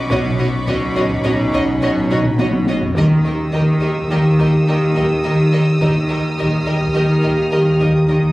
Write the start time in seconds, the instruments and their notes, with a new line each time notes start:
Already playing: ambient pad C#4 F#4, violin section B5 C#6 D6
0.10 sub bass B1, double bass section B1, cello section B2, french horn section C#4 D#4, ambient pad C#4 F#4 D#5, viola section F#4, violin section C#5 D#5, taiko
0.25 taiko low-mid
0.39 cello section B2, viola section F#4, violin section C#5 D#5
0.67 double bass section B1, cello section B2, viola section F#4, violin section C#5 D#5, taiko
0.95 cello section B2, viola section F#4, violin section C#5 D#5, taiko low-mid
1.09 taiko
1.24 double bass section B1, cello section B2, viola section F#4, violin section C#5 D#5, taiko low-mid
1.53 cello section B2, viola section F#4, violin section C#5 D#5, taiko
1.82 double bass section B1, cello section B2, viola section F#4, violin section C#5 D#5
1.95 taiko low-mid
2.09 cello section B2, viola section F#4, violin section C#5 D#5, taiko
2.24 taiko low-mid
2.38 double bass section B1, cello section B2, viola section F#4, violin section C#5 D#5, taiko high
2.53 taiko high
2.67 cello section B2, viola section F#4, violin section C#5 D#5, taiko high
2.81 taiko low
2.94 sub bass D#2, double bass section D#2, cello section D#3, timpani D#3, french horn section A#3 G4, ambient pad D#4 G4 A#4, viola section G4, violin section A#4 D#5 D#6 E6, taiko
3.24 cello section D#3, viola section G4, violin section A#4 D#5
3.52 double bass section D#2, cello section D#3, viola section G4, violin section A#4 D#5, taiko
3.81 cello section D#3, viola section G4, violin section A#4 D#5
3.95 taiko
4.10 double bass section D#2, cello section D#3, viola section G4, violin section A#4 D#5
4.38 cello section D#3, viola section G4, violin section A#4 D#5, taiko
4.67 double bass section D#2, cello section D#3, viola section G4, violin section A#4 D#5
4.95 cello section D#3, viola section G4, violin section A#4 D#5, taiko
5.24 double bass section D#2, cello section D#3, viola section G4, violin section A#4 D#5
5.52 cello section D#3, viola section G4, violin section A#4 D#5
5.81 double bass section D#2, sub bass D#2, cello section D#3, french horn section A#3 G4, ambient pad D#4 G4 A#4, viola section G4, violin section A#4 D#5, taiko
6.09 cello section D#3, viola section G4, violin section A#4 D#5
6.38 double bass section D#2, cello section D#3, viola section G4, violin section A#4 D#5, taiko
6.58 violin section F6
6.66 cello section D#3, viola section G4, violin section A#4 D#5
6.81 taiko
6.95 double bass section D#2, cello section D#3, viola section G4, violin section A#4 D#5
7.22 cello section D#3, viola section G4, violin section A#4 D#5, taiko
7.51 double bass section D#2, cello section D#3, viola section G4, violin section A#4 D#5
7.80 cello section D#3, viola section G4, violin section A#4 D#5, taiko
8.09 double bass section D#2, cello section D#3, viola section G4, violin section A#4 D#5